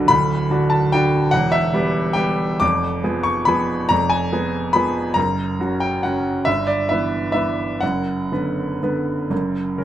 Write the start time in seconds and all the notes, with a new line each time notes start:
Already playing: B0 B1 D3 D4 F#4 B4
0.08 D1 D2 B5
0.50 D3 D4 F#4
0.70 A5
0.92 D3 D4 F#4 G5
1.31 E1 E2 F#5
1.52 E5
1.73 G3 B3 G4
2.13 G3 B3 G4 G5
2.60 F1 F2 D6
3.04 F3 B3 G#4
3.23 C#6
3.45 F3 B3 G#4 B5
3.89 F1 F2 A#5
4.10 G#5
4.32 B3 G#4
4.73 F3 B3 G#4 B5
5.14 F#1 F#2 A#5
5.60 C#3 C#4 F#4
5.80 G5
6.03 C#3 C#4 F#4 F#5
6.45 G1 G2 E5
6.67 D5
6.89 E3 B3 B4 E5
7.32 E3 B3 B4 E5
7.81 F#1 F#2 F#5
8.32 D3 B3 B4
8.83 D3 B3 B4
9.30 F#1 F#2
9.78 C#3 C#4 A#4